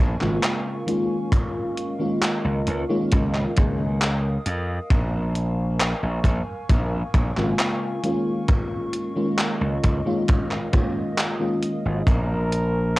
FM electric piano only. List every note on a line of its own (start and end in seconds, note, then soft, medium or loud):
0.20 0.82 C#3 medium
0.20 0.82 G#3 medium
0.20 0.83 A#3 medium
0.20 0.83 C4 medium
0.20 0.83 F4 medium
0.86 1.94 D#3 medium
0.86 1.94 G#3 medium
0.86 1.94 A#3 medium
0.86 1.95 C#4 medium
0.86 1.95 F4 medium
1.99 2.84 D#3 medium
1.99 2.84 G#3 medium
1.99 2.84 A#3 medium
1.99 2.84 C#4 medium
1.99 2.85 F4 medium
2.89 3.51 D#3 loud
2.89 3.51 G#3 medium
2.89 3.51 A#3 medium
2.89 3.51 C#4 medium
2.89 3.52 F4 loud
3.56 3.96 D#3 medium
3.56 3.96 G#3 medium
3.56 3.97 A#3 medium
3.56 3.97 C#4 medium
3.56 3.97 G#4 medium
7.36 7.99 C#3 medium
7.36 7.99 G#3 medium
7.36 7.99 A#3 medium
7.36 7.99 C4 medium
7.36 7.99 F4 medium
8.03 9.11 D#3 medium
8.03 9.11 G#3 medium
8.03 9.11 A#3 medium
8.03 9.11 C#4 medium
8.03 9.12 F4 medium
9.15 10.00 D#3 medium
9.15 10.00 G#3 medium
9.15 10.01 A#3 medium
9.15 10.01 C#4 medium
9.15 10.01 F4 medium
10.05 10.67 D#3 medium
10.05 10.68 G#3 medium
10.05 10.68 A#3 medium
10.05 10.68 C#4 medium
10.05 10.68 F4 loud
10.72 11.35 D#3 medium
10.72 11.35 G#3 medium
10.72 11.35 A#3 medium
10.72 11.35 C#4 medium
10.72 11.35 F4 medium
11.39 12.04 D#3 medium
11.39 12.05 G#3 medium
11.39 12.05 A#3 medium
11.39 12.05 C#4 medium
11.39 12.05 F4 medium